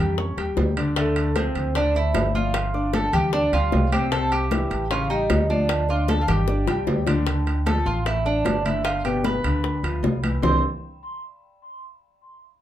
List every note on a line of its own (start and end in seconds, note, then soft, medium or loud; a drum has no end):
0.00 0.35 F2 loud
0.00 0.15 G3 medium
0.00 0.15 G4 medium
0.00 0.15 G5 medium
0.18 0.34 C#4 medium
0.18 0.34 C#5 medium
0.18 0.35 C#6 medium
0.18 high bongo medium
0.18 high conga soft
0.37 0.56 D#2 medium
0.37 0.70 G3 medium
0.37 0.70 G4 medium
0.37 0.70 G5 medium
0.37 high bongo soft
0.37 high conga soft
0.37 high timbale medium
0.57 1.49 D2 medium
0.57 high bongo soft
0.57 low bongo medium
0.57 high conga medium
0.57 low timbale medium
0.77 0.93 D3 medium
0.77 0.93 D4 medium
0.77 0.94 D5 medium
0.77 high timbale medium
0.96 1.29 D3 medium
0.96 1.33 A3 medium
0.96 1.29 D4 medium
0.96 1.37 A4 medium
0.96 1.29 D5 medium
0.96 high bongo medium
0.96 high conga soft
0.96 high timbale medium
1.16 high bongo soft
1.16 high conga soft
1.16 high timbale medium
1.35 1.68 F3 medium
1.35 1.73 C4 medium
1.35 1.68 F4 medium
1.35 1.77 C5 medium
1.35 1.68 F5 medium
1.35 high bongo medium
1.35 high conga loud
1.35 high timbale medium
1.35 low timbale medium
1.55 2.10 D2 medium
1.55 high bongo soft
1.55 high conga soft
1.55 high timbale medium
1.75 1.92 D3 medium
1.75 1.92 D4 medium
1.75 1.94 D4 medium
1.75 1.96 D5 medium
1.75 1.92 D5 medium
1.75 high bongo medium
1.75 high conga soft
1.75 high timbale medium
1.95 2.28 A3 medium
1.95 2.32 E4 medium
1.95 2.28 A4 medium
1.95 2.36 E5 medium
1.95 2.28 A5 medium
1.95 high bongo soft
1.95 high conga soft
2.14 3.07 G1 medium
2.14 high bongo soft
2.14 low bongo medium
2.14 high conga medium
2.14 high timbale loud
2.14 low timbale medium
2.35 2.67 F3 medium
2.35 2.67 F4 medium
2.35 2.90 F4 medium
2.35 2.96 F5 loud
2.35 2.67 F5 medium
2.35 high conga medium
2.54 high bongo medium
2.54 high timbale medium
2.74 3.06 D4 medium
2.74 3.06 D5 medium
2.74 3.06 D6 medium
2.74 high bongo soft
2.74 high conga soft
2.93 3.12 A4 medium
2.93 3.14 A5 medium
2.93 high bongo medium
2.93 high conga medium
2.93 high timbale medium
2.93 low timbale medium
3.13 3.50 D2 loud
3.13 3.29 G3 medium
3.13 3.30 G4 medium
3.13 3.32 G4 medium
3.13 3.30 G5 medium
3.13 3.32 G5 loud
3.13 high bongo soft
3.13 high conga soft
3.13 low conga medium
3.13 high timbale medium
3.33 3.49 D4 medium
3.33 3.51 D4 medium
3.33 3.49 D5 medium
3.33 3.53 D5 loud
3.33 3.49 D6 medium
3.33 high bongo medium
3.33 high conga soft
3.52 3.71 D2 medium
3.52 3.85 G3 medium
3.52 3.90 F4 medium
3.52 3.85 G4 medium
3.52 3.89 F5 loud
3.52 3.85 G5 medium
3.52 high bongo soft
3.52 high conga soft
3.52 high timbale medium
3.72 4.65 C2 medium
3.72 high bongo soft
3.72 low bongo medium
3.72 high conga medium
3.72 low timbale medium
3.92 4.08 C3 medium
3.92 4.08 C4 medium
3.92 4.11 G4 medium
3.92 4.09 C5 medium
3.92 4.13 G5 loud
3.92 high conga medium
3.92 high timbale loud
4.12 4.44 C3 medium
4.12 4.44 C4 medium
4.12 4.30 A4 medium
4.12 4.45 C5 medium
4.12 4.32 A5 loud
4.12 high bongo medium
4.12 high conga soft
4.12 high timbale medium
4.32 4.87 G4 medium
4.32 4.92 G5 loud
4.32 high bongo soft
4.32 high conga soft
4.32 high timbale medium
4.51 4.84 E3 medium
4.51 4.84 E4 medium
4.51 4.84 E5 medium
4.51 high bongo medium
4.51 high conga medium
4.51 high timbale medium
4.51 low timbale medium
4.71 5.26 A1 loud
4.71 high bongo soft
4.71 high conga soft
4.71 high timbale medium
4.90 5.07 C#3 medium
4.90 5.07 C#4 medium
4.90 5.09 F4 medium
4.90 5.07 C#5 medium
4.90 5.11 F5 loud
4.90 high bongo medium
4.90 high conga soft
4.90 high timbale medium
5.10 5.43 G3 medium
5.10 5.47 D#4 medium
5.10 5.43 G4 medium
5.10 5.51 D#5 medium
5.10 5.43 G5 medium
5.10 high bongo soft
5.10 high conga soft
5.30 6.22 D2 loud
5.30 high bongo soft
5.30 low bongo medium
5.30 high conga medium
5.30 high timbale loud
5.30 low timbale medium
5.50 5.82 F3 medium
5.50 5.86 D4 medium
5.50 5.82 F4 medium
5.50 5.91 D5 medium
5.50 5.82 F5 medium
5.50 high conga medium
5.69 high bongo medium
5.69 high timbale medium
5.89 6.22 D4 medium
5.89 6.08 F4 medium
5.89 6.22 D5 medium
5.89 6.08 F5 medium
5.89 6.22 D6 medium
5.89 high bongo soft
5.89 high conga soft
6.08 6.21 A4 medium
6.08 6.21 A5 medium
6.08 high bongo medium
6.08 high conga loud
6.08 high timbale medium
6.08 low timbale medium
6.21 6.28 F4 medium
6.21 6.28 F5 medium
6.28 6.65 G1 loud
6.28 6.44 G3 medium
6.28 7.03 G4 medium
6.28 6.45 G4 medium
6.28 6.45 G5 medium
6.28 7.04 G5 medium
6.28 high bongo medium
6.28 high conga soft
6.28 low conga medium
6.28 high timbale medium
6.48 6.64 D4 medium
6.48 6.65 D5 medium
6.48 6.65 D6 medium
6.48 high bongo medium
6.48 high conga soft
6.67 6.86 C2 medium
6.67 7.00 G3 medium
6.67 7.00 G4 medium
6.67 7.01 G5 medium
6.67 low bongo loud
6.67 high conga soft
6.67 high timbale medium
6.87 7.80 D2 medium
6.87 low bongo medium
6.87 high conga medium
6.87 low timbale medium
7.07 7.23 D3 medium
7.07 7.23 D4 medium
7.07 7.24 D5 medium
7.07 low bongo medium
7.07 high conga medium
7.07 high timbale loud
7.27 7.59 D3 medium
7.27 7.60 D4 medium
7.27 high bongo medium
7.27 high timbale medium
7.47 high bongo soft
7.47 high conga soft
7.47 high timbale medium
7.66 7.99 F3 medium
7.66 7.99 F4 medium
7.66 7.85 A4 medium
7.66 7.87 A5 medium
7.66 high bongo soft
7.66 high conga medium
7.66 high timbale medium
7.66 low timbale medium
7.86 8.41 A1 medium
7.86 8.05 F4 medium
7.86 8.07 F5 medium
7.86 high bongo soft
7.86 high conga soft
8.06 8.22 A3 medium
8.06 8.24 E4 medium
8.06 8.22 A4 medium
8.06 8.26 E5 medium
8.06 high bongo medium
8.06 high conga soft
8.06 high timbale medium
8.25 8.58 D4 medium
8.25 8.63 D4 medium
8.25 8.66 D5 medium
8.25 8.58 D5 medium
8.25 high bongo soft
8.25 high conga soft
8.45 9.38 G1 medium
8.45 high bongo soft
8.45 low bongo medium
8.45 high conga medium
8.45 high timbale medium
8.45 low timbale medium
8.65 8.98 D3 medium
8.65 8.98 D4 medium
8.65 8.84 E4 medium
8.65 8.84 E5 medium
8.65 high conga medium
8.65 high timbale medium
8.84 9.03 F4 medium
8.84 9.05 F5 medium
8.84 high bongo medium
8.84 high timbale medium
9.04 9.37 B2 medium
9.04 9.37 B3 medium
9.04 9.23 G4 medium
9.04 9.25 G5 medium
9.04 high bongo soft
9.04 high conga soft
9.04 high timbale medium
9.24 10.00 B4 medium
9.24 10.00 B5 medium
9.24 high bongo medium
9.24 high conga medium
9.24 high timbale medium
9.24 low timbale medium
9.44 9.81 D2 medium
9.44 9.76 D3 medium
9.44 9.77 D4 medium
9.44 high bongo soft
9.44 high conga soft
9.44 high timbale medium
9.64 high bongo medium
9.64 high conga soft
9.83 10.02 D2 medium
9.83 10.16 F3 medium
9.83 10.16 F4 medium
9.83 high bongo soft
9.83 high conga soft
9.83 high timbale medium
10.03 10.38 C2 medium
10.03 high bongo soft
10.03 low bongo medium
10.03 high conga medium
10.03 low timbale medium
10.23 10.39 E3 medium
10.23 10.39 E4 medium
10.23 high conga medium
10.23 high timbale medium
10.42 10.61 C2 medium
10.42 10.61 C3 medium
10.42 10.61 G3 medium
10.42 10.61 A#3 medium
10.42 10.61 C4 medium
10.42 10.61 D4 medium
10.42 10.62 E4 medium
10.42 10.62 C5 medium
10.42 10.62 C6 medium
10.42 low bongo loud
10.42 low conga medium
10.42 low timbale medium